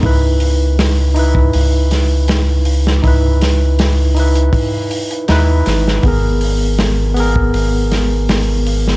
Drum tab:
HH |o-o-o-o-o-o-o-o-|o-o-o-oxo-oxo-o-|o-o-o-o-o-o-o-o-|
SD |----o-----o-o--o|--o-o-------o-oo|----o-----o-o--o|
BD |o------o--------|o-------o-------|o------o--------|